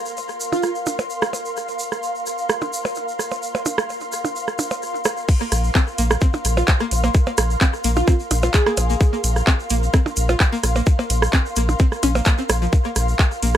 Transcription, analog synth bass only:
5.52 A#1
5.98 A#1
6.45 A#1
6.91 A#1
7.38 A#1
7.84 A#1
8.31 A#1
8.77 A#1
9.24 A#1
9.70 A#1
10.17 A#1
10.63 A#1
11.10 A#1
11.56 A#1
12.03 A#1
12.50 A#1
12.96 A#1
13.43 A#1

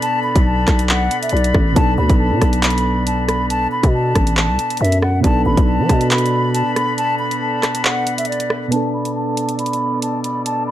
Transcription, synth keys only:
Already playing: B2 B3 D4 A4
1.73 B2 B3
1.77 D4 A4
5.20 B2 B3
5.25 D4 A4
8.68 B2 B3
8.73 D4 A4

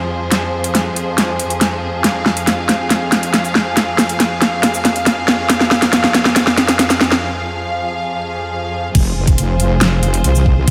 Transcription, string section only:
Already playing: F2 F3 G#4 C5
2.04 F5
8.95 F3 F4 G#4 C5

